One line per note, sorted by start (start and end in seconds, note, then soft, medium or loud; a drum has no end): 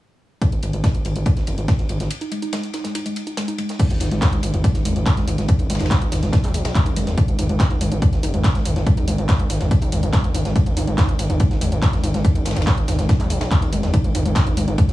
0.42 kick loud
0.42 closed hi-hat loud
0.42 ride medium
0.52 0.61 G#1 medium
0.52 closed hi-hat medium
0.63 0.71 G#1 loud
0.63 closed hi-hat medium
0.63 ride medium
0.73 0.82 G#1 medium
0.73 closed hi-hat medium
0.84 kick loud
0.84 snare loud
0.84 closed hi-hat medium
0.84 ride medium
0.94 1.03 G#1 medium
0.94 closed hi-hat medium
1.05 1.13 G#1 loud
1.05 closed hi-hat medium
1.05 ride medium
1.16 1.24 G#1 medium
1.16 closed hi-hat medium
1.26 kick loud
1.26 closed hi-hat loud
1.26 ride medium
1.37 1.45 G#1 medium
1.37 snare soft
1.37 closed hi-hat medium
1.47 1.56 F#1 loud
1.47 closed hi-hat medium
1.47 ride medium
1.58 1.66 G#1 medium
1.58 closed hi-hat medium
1.68 kick loud
1.68 snare loud
1.68 closed hi-hat loud
1.68 ride medium
1.79 1.87 G#1 medium
1.79 snare soft
1.79 closed hi-hat medium
1.89 1.98 G#1 medium
1.89 closed hi-hat medium
1.89 ride medium
2.00 2.08 G#1 medium
2.00 snare soft
2.00 closed hi-hat medium
2.11 closed hi-hat loud
2.11 ride medium
2.21 2.26 D#4 medium
2.21 closed hi-hat medium
2.21 ride soft
2.32 2.37 G#3 medium
2.32 closed hi-hat medium
2.32 ride medium
2.42 2.48 D#4 medium
2.42 closed hi-hat medium
2.53 2.56 G#3 medium
2.53 snare loud
2.53 closed hi-hat medium
2.53 ride medium
2.63 closed hi-hat medium
2.73 2.79 D#4 medium
2.73 snare medium
2.73 closed hi-hat medium
2.73 ride medium
2.84 2.90 G#3 medium
2.84 snare medium
2.84 closed hi-hat medium
2.95 3.00 D#4 medium
2.95 closed hi-hat loud
2.95 ride medium
3.06 3.09 G#3 medium
3.06 closed hi-hat medium
3.06 ride soft
3.16 closed hi-hat medium
3.16 ride medium
3.27 3.32 D#4 medium
3.27 closed hi-hat soft
3.37 3.43 G#3 medium
3.37 snare loud
3.37 closed hi-hat loud
3.37 ride medium
3.48 3.53 D#4 medium
3.48 closed hi-hat medium
3.58 3.62 G#3 medium
3.58 closed hi-hat medium
3.58 ride medium
3.69 snare medium
3.69 closed hi-hat medium
3.79 3.83 G#3 medium
3.79 kick loud
3.79 closed hi-hat loud
3.79 crash medium
3.79 ride medium
3.90 3.99 G#1 medium
3.90 closed hi-hat medium
3.90 mid tom medium
4.00 4.09 G#1 loud
4.00 4.06 D#4 medium
4.00 open hi-hat loud
4.00 ride medium
4.11 4.20 G#1 medium
4.11 4.17 G#3 medium
4.11 closed hi-hat medium
4.21 4.27 D#4 medium
4.21 kick loud
4.21 snare loud
4.21 clap loud
4.21 closed hi-hat loud
4.21 mid tom medium
4.21 ride medium
4.32 4.41 G#1 medium
4.32 4.36 G#3 medium
4.32 closed hi-hat medium
4.43 4.51 G#1 loud
4.43 open hi-hat loud
4.43 ride medium
4.54 4.62 G#1 loud
4.54 4.59 D#4 medium
4.54 closed hi-hat medium
4.54 mid tom medium
4.64 4.69 G#3 medium
4.64 kick loud
4.64 closed hi-hat loud
4.64 ride medium
4.74 4.83 G#1 medium
4.74 4.80 D#4 medium
4.74 snare soft
4.74 closed hi-hat medium
4.85 4.94 F#1 medium
4.85 4.88 G#3 medium
4.85 mid tom medium
4.85 open hi-hat loud
4.85 ride medium
4.96 5.04 G#1 medium
4.96 closed hi-hat medium
5.06 5.12 D#4 medium
5.06 kick loud
5.06 snare loud
5.06 clap loud
5.06 closed hi-hat loud
5.06 ride medium
5.17 5.25 G#1 medium
5.17 5.22 G#3 medium
5.17 snare soft
5.17 closed hi-hat medium
5.17 mid tom medium
5.27 5.36 G#1 loud
5.27 5.33 D#4 medium
5.27 open hi-hat loud
5.27 ride medium
5.38 5.46 G#1 medium
5.38 5.41 G#3 medium
5.38 snare soft
5.38 closed hi-hat medium
5.48 kick loud
5.48 closed hi-hat loud
5.48 mid tom medium
5.48 ride medium
5.59 5.68 F#1 medium
5.59 5.64 D#4 medium
5.59 closed hi-hat medium
5.59 ride soft
5.70 5.78 G#1 loud
5.70 5.75 G#3 medium
5.70 snare medium
5.70 open hi-hat loud
5.70 ride medium
5.75 snare medium
5.75 ride medium
5.79 5.89 G#1 medium
5.79 5.86 D#4 medium
5.79 snare medium
5.79 closed hi-hat medium
5.79 mid tom medium
5.79 ride medium
5.85 snare medium
5.85 ride medium
5.90 5.94 G#3 medium
5.90 kick loud
5.90 snare loud
5.90 clap loud
5.90 closed hi-hat medium
5.90 ride medium
6.02 6.10 G#1 medium
6.02 closed hi-hat medium
6.12 6.20 G#1 loud
6.12 6.17 D#4 medium
6.12 snare medium
6.12 mid tom medium
6.12 open hi-hat loud
6.12 ride medium
6.22 6.31 G#1 medium
6.22 6.28 G#3 medium
6.22 snare medium
6.22 closed hi-hat medium
6.33 6.38 D#4 medium
6.33 kick loud
6.33 snare loud
6.33 closed hi-hat medium
6.33 ride medium
6.44 6.52 B1 medium
6.44 6.47 G#3 medium
6.44 clap soft
6.44 mid tom medium
6.44 open hi-hat medium
6.54 6.63 B1 loud
6.54 open hi-hat loud
6.54 ride medium
6.65 6.73 B1 medium
6.65 6.70 D#4 medium
6.65 snare loud
6.65 closed hi-hat medium
6.65 ride medium
6.75 6.81 G#3 medium
6.75 kick loud
6.75 clap loud
6.75 closed hi-hat loud
6.75 mid tom medium
6.86 6.94 F#1 medium
6.86 6.91 D#4 medium
6.86 closed hi-hat medium
6.86 ride medium
6.96 7.05 F#1 loud
6.96 7.00 G#3 medium
6.96 open hi-hat loud
6.96 ride medium
7.07 7.15 F#1 medium
7.07 snare medium
7.07 closed hi-hat medium
7.07 mid tom medium
7.18 7.23 D#4 medium
7.18 kick loud
7.18 closed hi-hat loud
7.18 ride medium
7.28 7.37 G#1 medium
7.28 7.33 G#3 medium
7.28 closed hi-hat medium
7.39 7.47 G#1 loud
7.39 7.44 D#4 medium
7.39 mid tom medium
7.39 open hi-hat loud
7.39 ride medium
7.49 7.58 G#1 medium
7.49 7.52 G#3 medium
7.49 closed hi-hat medium
7.60 kick loud
7.60 snare loud
7.60 clap loud
7.60 closed hi-hat loud
7.60 ride medium
7.70 7.79 G#1 medium
7.70 7.76 D#4 medium
7.70 closed hi-hat medium
7.70 mid tom medium
7.81 7.89 G#1 loud
7.81 7.86 G#3 medium
7.81 open hi-hat loud
7.81 ride medium
7.92 8.00 G#1 medium
7.92 7.97 D#4 medium
7.92 closed hi-hat medium
8.02 8.05 G#3 medium
8.02 kick loud
8.02 closed hi-hat medium
8.02 mid tom medium
8.02 ride medium
8.13 8.21 G#1 medium
8.13 snare soft
8.13 closed hi-hat medium
8.23 8.32 F#1 medium
8.23 8.28 D#4 medium
8.23 open hi-hat loud
8.23 ride medium
8.34 8.42 G#1 medium
8.34 8.39 G#3 medium
8.34 closed hi-hat medium
8.34 mid tom medium
8.44 8.50 D#4 medium
8.44 kick loud
8.44 snare loud
8.44 clap loud
8.44 closed hi-hat medium
8.44 ride medium
8.55 8.63 G#1 medium
8.55 8.58 G#3 medium
8.55 snare medium
8.55 closed hi-hat medium
8.65 8.74 G#1 loud
8.65 mid tom medium
8.65 open hi-hat loud
8.65 ride medium
8.76 8.84 G#1 medium
8.76 8.81 D#4 medium
8.76 snare soft
8.76 closed hi-hat medium
8.86 8.92 G#3 medium
8.86 kick loud
8.86 closed hi-hat medium
8.86 ride medium
8.97 9.06 F#1 medium
8.97 9.02 D#4 medium
8.97 closed hi-hat medium
8.97 mid tom medium
8.97 ride soft
9.07 9.16 G#1 loud
9.07 9.11 G#3 medium
9.07 open hi-hat loud
9.07 ride medium
9.18 9.27 G#1 medium
9.18 closed hi-hat soft
9.28 9.34 D#4 medium
9.28 kick loud
9.28 snare loud
9.28 clap loud
9.28 closed hi-hat medium
9.28 mid tom medium
9.28 ride medium
9.39 9.48 G#1 medium
9.39 9.45 G#3 medium
9.39 closed hi-hat medium
9.50 9.58 G#1 loud
9.50 9.55 D#4 medium
9.50 snare soft
9.50 open hi-hat loud
9.50 ride medium
9.60 9.69 G#1 medium
9.60 9.64 G#3 medium
9.60 snare medium
9.60 closed hi-hat medium
9.60 mid tom medium
9.71 kick loud
9.71 closed hi-hat medium
9.71 ride medium
9.82 9.90 B1 medium
9.82 9.87 D#4 medium
9.82 open hi-hat medium
9.82 ride soft
9.92 10.01 G#1 loud
9.92 9.98 G#3 medium
9.92 mid tom medium
9.92 open hi-hat loud
9.92 ride medium
10.03 10.11 G#1 medium
10.03 10.08 D#4 medium
10.03 closed hi-hat soft
10.13 10.17 G#3 medium
10.13 kick loud
10.13 snare loud
10.13 clap loud
10.13 closed hi-hat medium
10.13 ride medium
10.24 10.32 G#1 medium
10.24 closed hi-hat medium
10.24 mid tom medium
10.34 10.43 G#1 loud
10.34 10.40 D#4 medium
10.34 open hi-hat loud
10.34 ride medium
10.45 10.53 G#1 medium
10.45 10.50 G#3 medium
10.45 snare medium
10.45 closed hi-hat medium
10.56 10.59 G#3 medium
10.56 kick loud
10.56 closed hi-hat medium
10.56 ride medium
10.66 10.75 G#1 medium
10.66 closed hi-hat medium
10.66 mid tom medium
10.77 10.85 G#1 loud
10.77 10.82 D#4 medium
10.77 open hi-hat loud
10.77 ride medium
10.87 10.96 G#1 loud
10.87 10.93 G#3 medium
10.87 closed hi-hat soft
10.98 11.03 D#4 medium
10.98 kick loud
10.98 snare loud
10.98 clap loud
10.98 closed hi-hat medium
10.98 mid tom medium
10.98 ride medium
11.09 11.17 G#1 medium
11.09 11.12 G#3 medium
11.09 closed hi-hat soft
11.19 11.27 G#1 loud
11.19 open hi-hat loud
11.19 ride medium
11.30 11.38 G#1 medium
11.30 11.35 D#4 medium
11.30 closed hi-hat medium
11.30 mid tom medium
11.40 11.45 G#3 medium
11.40 kick loud
11.40 closed hi-hat medium
11.40 ride medium
11.51 11.59 G#1 medium
11.51 11.56 D#4 medium
11.51 snare soft
11.51 closed hi-hat soft
11.61 11.70 F#1 loud
11.61 11.64 G#3 medium
11.61 mid tom medium
11.61 open hi-hat loud
11.61 ride medium
11.72 11.80 G#1 medium
11.72 closed hi-hat soft
11.82 11.88 D#4 medium
11.82 kick loud
11.82 snare loud
11.82 clap loud
11.82 closed hi-hat medium
11.82 ride medium
11.93 12.01 G#1 medium
11.93 11.98 G#3 medium
11.93 snare soft
11.93 closed hi-hat soft
11.93 mid tom medium
12.03 12.12 G#1 loud
12.03 12.09 D#4 medium
12.03 open hi-hat loud
12.03 ride medium
12.14 12.22 G#1 loud
12.14 12.17 G#3 medium
12.14 snare medium
12.14 closed hi-hat soft
12.24 kick loud
12.24 closed hi-hat medium
12.24 mid tom medium
12.24 ride medium
12.35 12.44 F#1 medium
12.35 12.41 D#4 medium
12.35 closed hi-hat medium
12.35 ride soft
12.45 12.54 G#1 loud
12.45 12.51 G#3 medium
12.45 snare medium
12.45 open hi-hat loud
12.45 ride medium
12.51 snare medium
12.51 ride medium
12.56 12.65 G#1 medium
12.56 12.62 D#4 medium
12.56 snare medium
12.56 closed hi-hat soft
12.56 mid tom medium
12.56 ride medium
12.61 snare medium
12.61 ride medium
12.67 12.70 G#3 medium
12.67 kick loud
12.67 snare loud
12.67 clap loud
12.67 closed hi-hat medium
12.67 ride medium
12.78 12.86 G#1 medium
12.78 closed hi-hat soft
12.88 12.96 G#1 loud
12.88 12.93 D#4 medium
12.88 snare medium
12.88 mid tom medium
12.88 open hi-hat loud
12.88 ride medium
12.99 13.07 G#1 medium
12.99 13.04 G#3 medium
12.99 snare medium
12.99 closed hi-hat soft
13.09 13.14 D#4 medium
13.09 kick loud
13.09 snare medium
13.09 closed hi-hat medium
13.09 ride medium
13.20 13.28 B1 medium
13.20 13.23 G#3 medium
13.20 clap soft
13.20 mid tom medium
13.20 open hi-hat medium
13.30 13.39 B1 loud
13.30 open hi-hat loud
13.30 ride medium
13.41 13.49 B1 medium
13.41 13.46 D#4 medium
13.41 snare loud
13.41 closed hi-hat soft
13.41 ride medium
13.51 13.57 G#3 medium
13.51 kick loud
13.51 clap loud
13.51 closed hi-hat medium
13.51 mid tom medium
13.62 13.70 F#1 medium
13.62 13.67 D#4 medium
13.62 closed hi-hat medium
13.62 ride medium
13.72 13.81 F#1 loud
13.72 13.76 G#3 medium
13.72 open hi-hat loud
13.72 ride medium
13.83 13.91 F#1 medium
13.83 snare medium
13.83 closed hi-hat soft
13.83 mid tom medium
13.94 13.99 D#4 medium
13.94 kick loud
13.94 closed hi-hat medium
13.94 ride medium
14.04 14.13 G#1 medium
14.04 14.10 G#3 medium
14.04 closed hi-hat medium
14.15 14.23 G#1 loud
14.15 14.20 D#4 medium
14.15 mid tom medium
14.15 open hi-hat loud
14.15 ride medium
14.25 14.34 G#1 medium
14.25 14.29 G#3 medium
14.25 closed hi-hat soft
14.35 kick loud
14.35 snare loud
14.35 clap loud
14.35 closed hi-hat medium
14.35 ride medium
14.47 14.55 G#1 medium
14.47 14.52 D#4 medium
14.47 closed hi-hat medium
14.47 mid tom medium
14.57 14.65 G#1 medium
14.57 14.62 G#3 medium
14.57 open hi-hat loud
14.57 ride medium
14.68 14.76 G#1 loud
14.68 14.73 D#4 medium
14.68 closed hi-hat medium
14.78 14.81 G#3 medium
14.78 kick loud
14.78 closed hi-hat medium
14.78 mid tom medium
14.78 ride medium
14.89 14.93 G#1 medium
14.89 snare soft
14.89 closed hi-hat medium